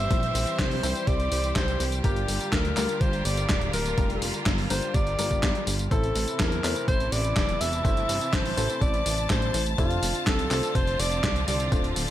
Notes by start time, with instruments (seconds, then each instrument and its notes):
Already playing: string section E3 G3 C4 G4 C5, alto saxophone E5
0.11 analog synth bass A#1, grand piano G3 C4 E4 C5, kick, closed hi-hat, tambourine
0.23 closed hi-hat, tambourine
0.35 analog synth bass A#1, open hi-hat, tambourine
0.47 closed hi-hat, tambourine
0.59 analog synth bass C2, alto saxophone C5, kick, snare, clap, closed hi-hat, tambourine
0.71 open hi-hat, tambourine
0.83 analog synth bass C2, grand piano G3 C4 E4 C5, open hi-hat, tambourine
0.96 closed hi-hat, tambourine
1.07 analog synth bass C2, alto saxophone D5, kick, closed hi-hat, tambourine
1.20 closed hi-hat, tambourine
1.32 analog synth bass C2, open hi-hat, tambourine
1.44 closed hi-hat, tambourine
1.56 analog synth bass C2, alto saxophone C5, kick, snare, clap, closed hi-hat, tambourine
1.68 closed hi-hat, tambourine
1.80 analog synth bass C2, open hi-hat, tambourine
1.92 closed hi-hat, tambourine
2.04 analog synth bass G1, string section D3 A#3 F4, grand piano G3 D4 F4 A#4, alto saxophone G4, kick, closed hi-hat, tambourine
2.16 closed hi-hat, tambourine
2.28 analog synth bass G1, open hi-hat, tambourine
2.41 closed hi-hat, tambourine
2.52 analog synth bass D2, alto saxophone A#4, kick, snare, clap, closed hi-hat, tambourine
2.65 closed hi-hat, tambourine
2.77 analog synth bass D2, grand piano G3 D4 F4 A#4, clap, open hi-hat, tambourine
2.89 closed hi-hat, tambourine
3.01 analog synth bass G1, alto saxophone C5, kick, closed hi-hat, tambourine
3.13 closed hi-hat, tambourine
3.25 analog synth bass G1, alto saxophone D5, open hi-hat, tambourine
3.37 closed hi-hat, tambourine
3.49 analog synth bass D1, kick, snare, clap, closed hi-hat, tambourine
3.61 closed hi-hat, tambourine
3.73 analog synth bass D1, alto saxophone A#4, open hi-hat, tambourine
3.86 closed hi-hat, tambourine
3.98 analog synth bass F1, grand piano G3 D4 F4 A#4, kick, closed hi-hat, tambourine
4.10 closed hi-hat, tambourine
4.22 analog synth bass F1, open hi-hat, tambourine
4.34 closed hi-hat, tambourine
4.46 analog synth bass G1, kick, snare, clap, closed hi-hat, tambourine
4.58 open hi-hat, tambourine
4.70 analog synth bass G1, grand piano G3 D4 F4 A#4, alto saxophone C5, open hi-hat, tambourine
4.82 closed hi-hat, tambourine
4.94 analog synth bass G1, alto saxophone D5, kick, closed hi-hat, tambourine
5.07 closed hi-hat, tambourine
5.19 analog synth bass G1, grand piano G3 D4 F4 A#4, open hi-hat, tambourine
5.31 kick, tambourine
5.43 analog synth bass G1, kick, snare, clap, closed hi-hat, tambourine
5.55 closed hi-hat, tambourine
5.67 analog synth bass G1, open hi-hat, tambourine
5.79 closed hi-hat, tambourine
5.91 analog synth bass A1, string section C3 E3 E4 A5, grand piano A3 C4 E4 C5, alto saxophone A4, kick, closed hi-hat, tambourine
6.04 closed hi-hat, tambourine
6.15 analog synth bass A1, open hi-hat, tambourine
6.28 closed hi-hat, tambourine
6.40 analog synth bass E2, alto saxophone A#4, kick, snare, clap, closed hi-hat, tambourine
6.52 closed hi-hat, tambourine
6.64 analog synth bass E2, grand piano A3 C4 E4 C5, clap, open hi-hat, tambourine
6.76 closed hi-hat, tambourine
6.88 analog synth bass A1, alto saxophone C5, kick, closed hi-hat, tambourine
7.00 closed hi-hat, tambourine
7.12 analog synth bass A1, alto saxophone D5, open hi-hat, tambourine
7.25 closed hi-hat, tambourine
7.36 analog synth bass E1, kick, snare, clap, closed hi-hat, tambourine
7.49 closed hi-hat, tambourine
7.60 analog synth bass E1, alto saxophone E5, open hi-hat, tambourine
7.73 closed hi-hat, tambourine
7.85 analog synth bass G1, grand piano A3 C4 E4 C5, kick, closed hi-hat, tambourine
7.97 closed hi-hat, tambourine
8.09 analog synth bass G1, open hi-hat, tambourine
8.21 closed hi-hat, tambourine
8.33 analog synth bass A1, alto saxophone C5, kick, snare, clap, closed hi-hat, tambourine
8.45 open hi-hat, tambourine
8.57 analog synth bass A1, grand piano A3 C4 E4 C5, open hi-hat, tambourine
8.70 closed hi-hat, tambourine
8.81 analog synth bass A1, alto saxophone D5, kick, closed hi-hat, tambourine
8.94 closed hi-hat, tambourine
9.06 analog synth bass A1, open hi-hat, tambourine
9.18 tambourine
9.30 analog synth bass A1, alto saxophone C5, kick, snare, clap, closed hi-hat, tambourine
9.42 closed hi-hat, tambourine
9.54 analog synth bass A1, open hi-hat, tambourine
9.66 closed hi-hat, tambourine
9.78 analog synth bass F1, string section D3 C4 F4, grand piano A3 D4 F4 C5, alto saxophone F4, kick, closed hi-hat, tambourine
9.91 closed hi-hat, tambourine
10.03 analog synth bass F1, open hi-hat, tambourine
10.15 closed hi-hat, tambourine
10.27 analog synth bass C2, alto saxophone A4, kick, snare, clap, closed hi-hat, tambourine
10.39 closed hi-hat, tambourine
10.51 analog synth bass C2, grand piano A3 D4 F4 C5, clap, open hi-hat, tambourine
10.63 closed hi-hat, tambourine
10.75 analog synth bass F1, alto saxophone C5, kick, closed hi-hat, tambourine
10.87 closed hi-hat, tambourine
10.99 analog synth bass F1, alto saxophone D5, open hi-hat, tambourine
11.12 closed hi-hat, tambourine
11.24 analog synth bass C2, kick, snare, clap, closed hi-hat, tambourine
11.36 closed hi-hat, tambourine
11.48 analog synth bass C2, alto saxophone D5, open hi-hat, tambourine
11.60 closed hi-hat, tambourine
11.72 analog synth bass D1, grand piano A3 D4 F4 C5, kick, closed hi-hat, tambourine
11.84 closed hi-hat, tambourine
11.96 analog synth bass D1, open hi-hat, tambourine